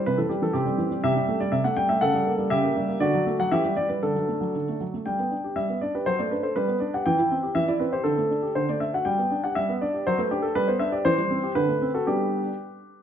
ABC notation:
X:1
M:2/4
L:1/16
Q:1/4=120
K:C
V:1 name="Grand piano"
B A G A [CG]4 | [K:G] [Ge]3 d e f g e | [Af]4 [Ge]4 | [Fd]3 f [Ge]2 d B |
[DA]6 z2 | g4 e2 d B | c d B c B2 d f | g4 e d B c |
A4 c d e f | g3 f e2 d2 | c B G A B c e d | c4 B3 A |
G4 z4 |]
V:2 name="Grand piano"
C, E, G, E, C, G, E, G, | [K:G] C, G, A, G, C, A, G, A, | ^C, G, ^A, G, C, A, G, A, | D, F, A, F, E, G, G, G, |
D, F, A, F, D, A, F, A, | G, B, D G G, B, D G | F, A, D A G, B, D G | E, E C G E, E C G |
D, A, D G D, A, D F | G, B, D G G, B, D G | F, A, D z G, B, D G | E, G, C G D, A, C F |
[G,B,D]4 z4 |]